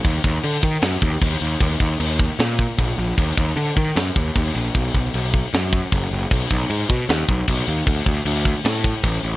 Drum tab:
CC |x-x-x-x-|x-x-x-x-|x-x-x-x-|x-x-x-x-|
SD |----o---|----o---|----o---|----o---|
BD |oo-o-oo-|oo-o-oo-|oo-o-oo-|oo-o-oo-|

CC |x-x-x-x-|x-x-x-x-|
SD |----o---|----o---|
BD |oo-o-oo-|oo-o-oo-|